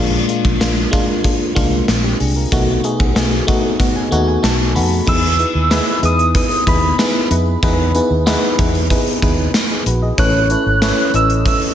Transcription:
Already playing: fingered electric bass A#1, fm electric piano A#2 G#3 A#3 D4 F4
0.28 fm electric piano G#3 A#3 D4 F4, closed hi-hat
0.45 fingered electric bass A#1, kick
0.60 fingered electric bass A#1, fm electric piano G#3 A#3 D4 F4, snare, closed hi-hat
0.91 fm electric piano G#3 A#3 D4 F4, kick, closed hi-hat
1.23 fm electric piano G#3 A#3 D4 F4, kick, closed hi-hat
1.55 fingered electric bass C2, fm electric piano G#3 A#3 D4 F4, kick, closed hi-hat
1.88 fingered electric bass A#1, fm electric piano C4 F4, snare, closed hi-hat
2.04 fm electric piano D4 G4
2.20 fingered electric bass C2, fm electric piano D4 G#4, open hi-hat
2.36 fm electric piano F4 A#4
2.52 fingered electric bass B1, fm electric piano B2 A3 B3 D#4 F#4, kick, closed hi-hat
2.83 fm electric piano A3 B3 D#4 G#4, closed hi-hat
3.00 fingered electric bass B1, kick
3.15 fingered electric bass B1, fm electric piano A3 B3 D#4 G#4, snare, closed hi-hat
3.47 fm electric piano A3 B3 D#4 F#4 D#5, kick, closed hi-hat
3.79 fm electric piano A3 B3 D#4 F#4 F#5, kick, closed hi-hat
3.96 fm electric piano G#5
4.11 fingered electric bass D#2, fm electric piano A3 B3 D#4 F#4, closed hi-hat
4.28 fm electric piano G#5
4.42 fingered electric bass B1, fm electric piano A3 B3 D#4 F#4 A5, snare, closed hi-hat
4.75 fingered electric bass F2, fm electric piano A3 B3 D#4 F#4 B5, open hi-hat
5.07 fingered electric bass E2, fm electric piano B3 D#4 E4 G#4 B4, soft synth lead E6, kick, crash
5.39 fm electric piano B3 D#4 E4 G#4 B4, closed hi-hat
5.55 fingered electric bass D#2
5.70 fm electric piano B3 D#4 E4 G#4 B4, snare, closed hi-hat, tambourine
6.02 fingered electric bass E2, fm electric piano B3 D#4 E4 G#4 B4, soft synth lead D#6, closed hi-hat
6.19 closed hi-hat
6.34 fm electric piano B3 D#4 E4 G#4 B4, soft synth lead D#6, kick, closed hi-hat
6.51 closed hi-hat
6.66 fingered electric bass D#2, fm electric piano B3 D#4 E4 G#4 B4, soft synth lead B5, kick, closed hi-hat
6.98 fm electric piano B3 D#4 E4 G#4 B4, snare, closed hi-hat, tambourine
7.30 fingered electric bass F2, fm electric piano B3 D#4 E4 G#4 B4, closed hi-hat
7.63 fingered electric bass E2, fm electric piano B3 D#4 E4 G#4 B4, kick, closed hi-hat
7.95 fm electric piano B3 D#4 E4 G#4 B4, closed hi-hat
8.10 fingered electric bass D#2
8.26 fm electric piano B3 D#4 E4 G#4 B4, snare, closed hi-hat, tambourine
8.58 fingered electric bass E2, fm electric piano B3 D#4 E4 G#4 B4, kick, closed hi-hat
8.75 closed hi-hat
8.90 fm electric piano B3 D#4 E4 G#4 B4, kick, closed hi-hat
9.07 closed hi-hat
9.22 fingered electric bass D#2, fm electric piano B3 D#4 E4 G#4 B4, kick, closed hi-hat
9.54 snare, closed hi-hat, tambourine
9.71 fm electric piano D#4 G#4
9.86 fingered electric bass A#1, fm electric piano F#4 B4, closed hi-hat
10.02 fm electric piano G#4 D#5
10.18 fingered electric bass A1, fm electric piano A3 C#4 E4 A4 B4 C#5, soft synth lead F#6, kick, closed hi-hat
10.50 fm electric piano C#4 E4 A4 B4 C#5, closed hi-hat
10.66 fingered electric bass G#1
10.82 fm electric piano C#4 E4 A4 B4 C#5, snare, closed hi-hat, tambourine
11.14 fingered electric bass A1, fm electric piano C#4 E4 A4 B4 D#5, soft synth lead E6, closed hi-hat
11.30 closed hi-hat
11.46 fm electric piano C#4 E4 A4 B4 C#5, soft synth lead E6, kick, closed hi-hat
11.62 closed hi-hat

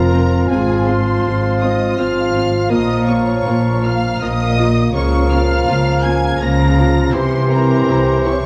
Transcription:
Already playing: double bass section F1, cello section F2, bassoon F3, french horn section C4 F4, clarinet F4, violin section A#4 A#5, oboe F5, flute C6
0.13 viola section C4 F4
0.49 double bass section G#1, cello section G#2, bassoon F3, viola section C4 F4, clarinet F4, violin section G#4 G#5, oboe F5, flute C6
0.88 viola section C4 F4, violin section C5 C6
1.25 double bass section G#1, cello section G#2, viola section C4 F4
1.62 viola section C4 F4, violin section D#5 D#6
1.98 double bass section G#1, cello section G#2, bassoon F3, viola section C4 F4, clarinet F4, oboe F5, violin section F5 F6, flute C6
2.34 viola section C4 F4
2.70 double bass section A#1, cello section A#2, bassoon F3, viola section A#3 F4, french horn section A#3 F4, clarinet F4, violin section D#5 D#6, oboe F5, flute A#5
3.07 viola section A#3 F4, violin section C#5 C#6
3.46 double bass section A#1, cello section A#2, viola section A#3 F4
3.84 viola section A#3 F4, violin section F5 F6
4.21 double bass section A#1, cello section A#2, viola section A#3 F4, violin section D#5 D#6
4.59 viola section A#3 F4
4.93 double bass section C#2, cello section C#3, bassoon F3, viola section A#3 F4, clarinet F4, violin section C#5 C#6, oboe F5, flute A#5
5.30 viola section A#3 F4, violin section F5 F6
5.68 double bass section C#2, cello section C#3, viola section A#3 F4
6.04 viola section A#3 F4, violin section G#5 G#6
6.40 double bass section C#2, cello section C#3, bassoon F3, viola section A#3 F4, clarinet F4, oboe F5, violin section A#5 A#6, flute A#5
6.77 viola section A#3 F4
7.13 double bass section C2, cello section C3, bassoon E3, viola section C4 E4, french horn section C4 E4, clarinet G4, violin section C5 C6, oboe C5, flute C6
7.50 viola section C4 E4, violin section A#4 A#5
7.87 double bass section C2, cello section C3, viola section C4 E4
8.25 viola section C4 E4, violin section C#5 C#6

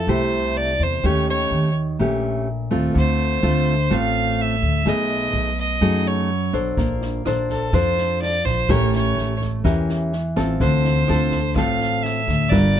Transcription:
Already playing: fiddle A4
0.07 upright bass C2, nylon-string guitar C3 A3 E4 G4, fiddle C5
0.57 fiddle D5
0.80 upright bass E2, fiddle C5
1.04 upright bass D#2, nylon-string guitar D#3 A3 C#4 G4, fiddle C#5
1.30 fiddle C#5
1.51 upright bass D#2
1.99 upright bass A#1, nylon-string guitar A#2 A3 C#4 G4
2.71 upright bass D#2, nylon-string guitar A3 C4 F4
2.94 upright bass D2, nylon-string guitar D3
2.98 fiddle C5
3.43 upright bass D2, nylon-string guitar A3 C4 F4
3.90 upright bass A1, nylon-string guitar A2 A3 C4 F4, fiddle F5
4.41 fiddle E5
4.62 upright bass D2
4.85 upright bass B1, nylon-string guitar B2 A3 D#4 G#4, fiddle D#5
5.33 upright bass B1
5.60 fiddle D#5
5.81 upright bass F#2, nylon-string guitar F#3 A3 D#4 G#4
6.08 fiddle C#5
6.53 upright bass B1, nylon-string guitar D4 A4 C5
6.77 upright bass A#1, nylon-string guitar A#3, kick, snare
7.01 snare
7.25 upright bass A#1, nylon-string guitar D4 A4 C5, cross-stick, snare
7.49 fiddle A4, kick, snare
7.73 upright bass F2, nylon-string guitar F3 D4 A4 C5, fiddle C5, kick, cross-stick, snare
7.98 snare
8.22 fiddle D5, snare
8.45 upright bass A#1, fiddle C5, kick, snare
8.69 upright bass A1, nylon-string guitar A3 C#4 G4 A#4, fiddle C#5, kick, cross-stick, snare
8.94 fiddle C#5, snare
9.17 upright bass A1, snare
9.41 kick, snare
9.64 upright bass E2, nylon-string guitar E3 C#4 G4 A#4, kick, cross-stick, snare
9.89 snare
10.13 snare
10.36 upright bass A1, nylon-string guitar C4 F4 A4, kick, cross-stick, snare
10.60 upright bass D2, nylon-string guitar D3, fiddle C5, kick, snare
10.84 snare
11.08 upright bass D2, nylon-string guitar C4 F4 A4, cross-stick, snare
11.31 kick, snare
11.56 upright bass A1, nylon-string guitar A2 C4 F4 A4, fiddle F5, kick, cross-stick, snare
11.80 snare
12.03 fiddle E5, snare
12.28 upright bass D2, kick, snare
12.50 upright bass G1, nylon-string guitar G3 D4 F4 A#4, fiddle D5, kick, cross-stick, snare
12.76 snare

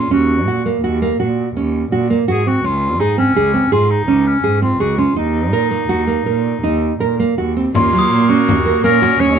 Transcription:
Already playing: clarinet F4
0.11 cello D#2, nylon-string guitar C#4, clarinet F#4
0.48 cello A#2, nylon-string guitar F#4
0.66 nylon-string guitar A#3
0.83 cello D#2, nylon-string guitar F#4
1.02 nylon-string guitar A#3
1.20 cello A#2, nylon-string guitar F#4
1.56 cello D#2, nylon-string guitar C#4
1.92 cello A#2, nylon-string guitar F#4
2.10 nylon-string guitar A#3
2.28 cello G#2, nylon-string guitar F#4, clarinet G#4
2.47 nylon-string guitar C4, clarinet F#4
2.64 cello C#2, nylon-string guitar C#4, clarinet F4
3.00 cello G#2, clarinet D#4, nylon-string guitar G#4
3.18 nylon-string guitar C4, clarinet C#4
3.35 cello C#2, nylon-string guitar G#4
3.54 nylon-string guitar C4
3.71 cello G#2, clarinet F4, nylon-string guitar G#4
3.91 clarinet D#4
4.07 cello C#2, nylon-string guitar C#4
4.27 clarinet C#4
4.44 cello G#2, nylon-string guitar G#4
4.62 nylon-string guitar C4, clarinet F4
4.80 cello C#2, clarinet F#4, nylon-string guitar G#4
4.98 nylon-string guitar C#4, clarinet F4
5.16 cello D#2, nylon-string guitar D#4, clarinet D#4
5.53 cello A#2, nylon-string guitar A#4
5.71 nylon-string guitar A#3
5.89 cello D#2, nylon-string guitar F#4
6.07 nylon-string guitar A#3
6.26 cello A#2, nylon-string guitar A#4
6.63 cello D#2, nylon-string guitar D#4
7.00 cello A#2, nylon-string guitar A#4
7.20 nylon-string guitar A#3
7.38 cello D#2, nylon-string guitar F#4
7.56 nylon-string guitar C4
7.74 cello D#2, viola A#3, nylon-string guitar C#4, clarinet F4, frame drum
7.93 nylon-string guitar F#3
7.99 glockenspiel D#6
8.12 cello A#2
8.29 nylon-string guitar C#4, clarinet F#4
8.48 cello D#2, frame drum
8.66 nylon-string guitar A#4, frame drum
8.83 cello A#2, nylon-string guitar A#3, viola C#4, clarinet A#4
9.02 nylon-string guitar F#4, frame drum
9.20 cello D#2, nylon-string guitar C#4, clarinet C#5

